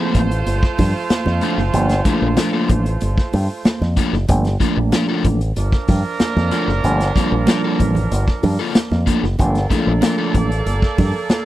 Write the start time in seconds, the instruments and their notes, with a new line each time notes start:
Already playing: tonewheel organ F3 A3 A#3 C4, horn section A3 F4 C5
0.00 overdriven electric guitar A#3 F4 A4
0.15 fingered electric bass A1, kick, closed hi-hat
0.31 closed hi-hat
0.46 fingered electric bass G1, closed hi-hat, muted conga
0.63 kick, snare
0.78 fingered electric bass G2, kick, open hi-hat, muted conga, low conga
1.10 muted fingered electric bass stroke, snare, closed hi-hat, high conga
1.26 fingered electric bass F2, snare, high conga
1.41 tonewheel organ F3 A3 A#3 D4, overdriven electric guitar A#3 F4 A4, closed hi-hat
1.58 fingered electric bass F#1, snare
1.73 fingered electric bass G1, tonewheel organ F3 A3 A#3 D4, closed hi-hat, muted conga
1.89 snare, closed hi-hat
2.05 tonewheel organ F3 A3 A#3 D4, overdriven electric guitar A#3 F4 A4, kick, closed hi-hat, muted conga
2.22 fingered electric bass A#1
2.37 overdriven electric guitar A#3 F4 A#4, snare, closed hi-hat, high conga
2.53 overdriven electric guitar A#3 F4 A4
2.69 fingered electric bass A1, kick, closed hi-hat
2.86 closed hi-hat
3.01 fingered electric bass G1, closed hi-hat, muted conga
3.18 kick, snare
3.33 fingered electric bass G2, open hi-hat, muted conga
3.65 muted fingered electric bass stroke, snare, closed hi-hat, high conga
3.81 fingered electric bass F2, snare, high conga
3.97 tonewheel organ F3 A3 A#3 D4, overdriven electric guitar A#3 F4 A4, kick, closed hi-hat
4.13 fingered electric bass F#1, snare
4.28 fingered electric bass G1, tonewheel organ F3 A3 A#3 D4, kick, closed hi-hat, muted conga
4.45 snare, closed hi-hat
4.60 tonewheel organ F3 A3 A#3 D4, overdriven electric guitar A#3 F4 A4, kick, closed hi-hat
4.77 fingered electric bass A#1
4.92 overdriven electric guitar A#3 F4 A#4, snare, closed hi-hat, high conga
5.09 overdriven electric guitar A#3 F4 A4
5.25 fingered electric bass A1, kick, closed hi-hat
5.41 closed hi-hat
5.56 fingered electric bass G1, horn section F3 D4 A#4, closed hi-hat, muted conga
5.72 kick, snare
5.88 fingered electric bass G2, kick, open hi-hat, muted conga, low conga
6.20 muted fingered electric bass stroke, snare, closed hi-hat, high conga
6.36 fingered electric bass F2, snare, high conga
6.51 tonewheel organ F3 A3 A#3 D4, overdriven electric guitar A#3 F4 A4, closed hi-hat
6.68 fingered electric bass F#1, snare
6.83 fingered electric bass G1, tonewheel organ F3 A3 A#3 D4, closed hi-hat, muted conga
7.00 snare, closed hi-hat
7.15 tonewheel organ F3 G3 A#3 C4, overdriven electric guitar A#3 F4 A4, kick, closed hi-hat
7.23 tonewheel organ D4
7.32 fingered electric bass A#1
7.47 overdriven electric guitar A#3 F4 A#4, snare, closed hi-hat, high conga
7.64 overdriven electric guitar A#3 F4 A4
7.80 fingered electric bass A1, kick, closed hi-hat
7.95 closed hi-hat, low conga
8.11 fingered electric bass G1, closed hi-hat, muted conga
8.28 kick, snare
8.43 fingered electric bass G2, open hi-hat, muted conga, low conga
8.59 overdriven electric guitar A#3 F4 A4
8.75 muted fingered electric bass stroke, snare, closed hi-hat, high conga
8.91 fingered electric bass F2, snare, high conga
9.06 tonewheel organ F3 A3 A#3 D4, overdriven electric guitar A#3 F4 A4, kick, closed hi-hat
9.23 fingered electric bass F#1, snare
9.38 fingered electric bass G1, tonewheel organ F3 A3 A#3 D4, horn section A#3 A4 D5, kick, closed hi-hat, muted conga
9.55 snare, closed hi-hat
9.70 tonewheel organ F3 A3 A#3 D4, overdriven electric guitar A#3 F4 A4, kick, closed hi-hat, muted conga
9.87 fingered electric bass A#1
10.02 overdriven electric guitar A#3 F4 A#4, snare, closed hi-hat, high conga
10.18 overdriven electric guitar A#3 F4 A4
10.34 fingered electric bass A1, kick, closed hi-hat
10.52 closed hi-hat
10.66 fingered electric bass G1, closed hi-hat, muted conga
10.82 kick, snare
10.98 fingered electric bass G2, kick, open hi-hat, muted conga, low conga
11.29 muted fingered electric bass stroke, snare, closed hi-hat, high conga